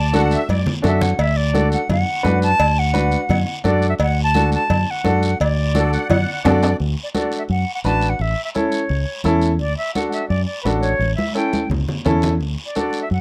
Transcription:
Already playing: fingered electric bass D2, accordion D5, flute A5
0.13 upright piano D4 F#4 A4, accordion F#5, high conga, short guiro
0.31 accordion E5, short guiro
0.49 fingered electric bass F#2, accordion D5, cowbell, high conga, long guiro
0.66 low conga
0.82 fingered electric bass F#2, upright piano D4 F#4 A4, flute E5, low conga, low timbale, short guiro
1.01 flute F#5, low conga, short guiro
1.18 fingered electric bass D2, flute E5, cowbell, high conga, long guiro
1.37 flute D5
1.53 upright piano D4 F#4 A4, high conga, short guiro
1.72 flute F#5, short guiro
1.89 fingered electric bass F#2, flute F#5, cowbell, high conga, low conga, long guiro
2.23 fingered electric bass F#2, upright piano D4 F#4 B4, high conga, low timbale, short guiro
2.42 flute A5, short guiro
2.59 fingered electric bass D2, cowbell, high conga, long guiro
2.79 flute F#5
2.93 upright piano D4 F#4 B4, high conga, short guiro
3.11 short guiro
3.29 fingered electric bass F#2, cowbell, high conga, low conga, long guiro
3.64 fingered electric bass F#2, upright piano D4 F#4 A4, flute D5, high conga, short guiro
3.82 short guiro
3.90 flute E5
3.99 fingered electric bass D2, flute F#5, cowbell, high conga, long guiro
4.24 flute A5
4.34 upright piano D4 F#4 A4, high conga, short guiro
4.52 flute A5, short guiro
4.70 fingered electric bass F#2, cowbell, high conga, low conga, long guiro
4.91 flute F#5
5.04 fingered electric bass F#2, upright piano D4 F#4 A4, high conga, short guiro
5.23 short guiro
5.40 fingered electric bass D2, flute D5, cowbell, high conga, long guiro
5.75 upright piano D4 F#4 A4, accordion A4, high conga, short guiro
5.93 accordion F#5, short guiro
6.09 fingered electric bass F#2, accordion F#5, cowbell, high conga, low conga, high timbale, long guiro
6.44 fingered electric bass F#2, upright piano D4 F#4 A4, accordion D5, high conga, low conga, low timbale, short guiro
6.63 low timbale, short guiro
6.80 fingered electric bass D2, high conga, long guiro
7.03 flute D5
7.14 upright piano D4 F#4 A4, flute D5, high conga, short guiro
7.32 short guiro
7.38 flute E5
7.49 fingered electric bass F#2, flute F#5, high conga, long guiro
7.75 flute F#5
7.84 fingered electric bass A1, upright piano D4 F#4 B4, flute A5, high conga, short guiro
8.02 short guiro
8.10 flute F#5
8.19 fingered electric bass A1, flute E5, high conga, long guiro
8.44 flute E5
8.55 upright piano C#4 E4 A4, flute C#5, high conga, short guiro
8.72 short guiro
8.89 fingered electric bass C#2, high conga, long guiro
9.24 fingered electric bass E2, upright piano C#4 E4 A4, high conga, short guiro
9.42 short guiro
9.59 fingered electric bass D2, flute D5, high conga, long guiro
9.78 flute E5
9.95 upright piano D4 F#4 A4, flute F#5, high conga, short guiro
10.12 flute E5, short guiro
10.29 fingered electric bass F#2, flute D5, high conga, long guiro
10.45 flute D5
10.63 fingered electric bass A1, upright piano D4 F#4 A4, flute B4, high conga, short guiro
10.80 flute C#5, short guiro
10.99 fingered electric bass A1, high conga, long guiro
11.16 flute E5, high conga
11.34 upright piano C#4 E4 A4, flute G5, short guiro
11.53 high conga, short guiro
11.70 fingered electric bass C#2, low conga, long guiro
11.88 low conga
12.05 fingered electric bass E2, upright piano C#4 E4 A4, low conga, short guiro
12.22 low conga, short guiro
12.40 fingered electric bass D2, high conga, long guiro
12.66 flute D5
12.75 upright piano D4 F#4 A4, flute D5, high conga, short guiro
12.93 short guiro
13.02 flute E5
13.10 fingered electric bass F#2, flute F#5, high conga, long guiro

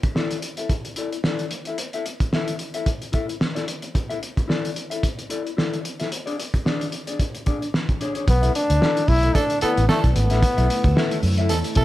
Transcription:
0.03 muted clean electric guitar stroke, kick, closed hi-hat
0.15 clean electric guitar E4 A4 D5, snare
0.31 closed hi-hat
0.42 muted clean electric guitar stroke, closed hi-hat
0.57 clean electric guitar E4 A4 E5, closed hi-hat
0.70 kick, closed hi-hat
0.85 muted clean electric guitar stroke, closed hi-hat
0.96 clean electric guitar E4 A4 D5, closed hi-hat
1.12 muted clean electric guitar stroke, closed hi-hat
1.24 clean electric guitar E4 A4 D5, snare
1.39 closed hi-hat
1.51 muted clean electric guitar stroke, closed hi-hat
1.65 clean electric guitar E4 A4 E5, closed hi-hat
1.78 muted clean electric guitar stroke, closed hi-hat
1.93 clean electric guitar E4 A4 E5, closed hi-hat
2.06 muted clean electric guitar stroke, closed hi-hat
2.20 muted clean electric guitar stroke, kick, closed hi-hat
2.33 clean electric guitar E4 A4 E5, snare
2.48 closed hi-hat
2.59 muted clean electric guitar stroke, closed hi-hat
2.74 clean electric guitar E4 A4 E5, closed hi-hat
2.86 kick, closed hi-hat
3.02 muted clean electric guitar stroke, closed hi-hat
3.12 clean electric guitar E4 A4 E5, kick, closed hi-hat
3.28 muted clean electric guitar stroke, closed hi-hat
3.40 muted clean electric guitar stroke, snare
3.55 clean electric guitar E4 A4 D5, snare, closed hi-hat
3.67 muted clean electric guitar stroke, closed hi-hat
3.82 muted clean electric guitar stroke, closed hi-hat
3.94 muted clean electric guitar stroke, kick, closed hi-hat
4.10 clean electric guitar E4 A4 E5, closed hi-hat
4.21 muted clean electric guitar stroke, closed hi-hat
4.36 muted clean electric guitar stroke, kick, closed hi-hat
4.48 clean electric guitar E4 A4 D5, snare
4.65 closed hi-hat
4.76 muted clean electric guitar stroke, closed hi-hat
4.90 clean electric guitar E4 A4 E5, closed hi-hat
5.03 kick, closed hi-hat
5.18 muted clean electric guitar stroke, closed hi-hat
5.30 clean electric guitar E4 A4 D5, closed hi-hat
5.45 muted clean electric guitar stroke, closed hi-hat
5.57 clean electric guitar E4 A4 D5, snare
5.73 closed hi-hat
5.84 muted clean electric guitar stroke, closed hi-hat
6.00 clean electric guitar E4 A4 E5, snare, closed hi-hat
6.11 muted clean electric guitar stroke, closed hi-hat
6.26 clean electric guitar D4 G#4 D5, closed hi-hat
6.39 muted clean electric guitar stroke, closed hi-hat
6.54 muted clean electric guitar stroke, kick, closed hi-hat
6.65 clean electric guitar D4 G#4 D5, snare
6.81 closed hi-hat
6.92 muted clean electric guitar stroke, closed hi-hat
7.07 clean electric guitar D4 G#4 D5, closed hi-hat
7.20 kick, closed hi-hat
7.34 muted clean electric guitar stroke, closed hi-hat
7.46 clean electric guitar D4 G#4 D5, kick, closed hi-hat
7.62 muted clean electric guitar stroke, closed hi-hat
7.74 muted clean electric guitar stroke, snare
7.89 muted clean electric guitar stroke, kick, closed hi-hat
8.01 clean electric guitar D4 G#4 C#5, closed hi-hat
8.15 clean electric guitar D4 G#4 C#5, closed hi-hat
8.28 fingered electric bass B1, string machine D3 A3 E4 C#5, trombone B3, kick, closed hi-hat
8.42 clean electric guitar E4 A4 E5, closed hi-hat
8.54 trombone D4, muted clean electric guitar stroke, closed hi-hat
8.68 fingered electric bass D2, muted clean electric guitar stroke, closed hi-hat
8.81 clean electric guitar E4 A4 D5, snare
8.97 closed hi-hat
9.08 fingered electric bass B1, trombone E4, muted clean electric guitar stroke, kick, open hi-hat
9.23 clean electric guitar E4 A4 E5, closed hi-hat
9.35 trombone D4, tenor saxophone A4, kick, closed hi-hat
9.50 muted clean electric guitar stroke, closed hi-hat
9.61 trombone B3, clean electric guitar E4 A4 D5, tenor saxophone A4, muted fingered electric bass stroke, closed hi-hat
9.77 fingered electric bass A1, muted clean electric guitar stroke, closed hi-hat
9.88 trombone A3, clean electric guitar E4 A4 D5, tenor saxophone A4, snare
10.04 fingered electric bass B1, kick, closed hi-hat
10.15 fingered electric bass G#1, trombone B3, muted clean electric guitar stroke, closed hi-hat
10.30 fingered electric bass A1, clean electric guitar E4 A4 E5, snare, closed hi-hat
10.42 muted clean electric guitar stroke, kick, closed hi-hat
10.57 fingered electric bass B1, clean electric guitar E4 A4 E5, closed hi-hat
10.69 muted clean electric guitar stroke, closed hi-hat
10.84 fingered electric bass D2, muted clean electric guitar stroke, kick, closed hi-hat
10.96 clean electric guitar E4 A4 E5, snare
11.11 closed hi-hat
11.23 fingered electric bass F#2, muted clean electric guitar stroke, open hi-hat
11.37 clean electric guitar E4 A4 E5, closed hi-hat
11.49 fingered electric bass E2, tenor saxophone A4, closed hi-hat
11.64 muted clean electric guitar stroke, closed hi-hat
11.75 fingered electric bass B2, clean electric guitar E4 A4 E5, tenor saxophone A4, kick, closed hi-hat

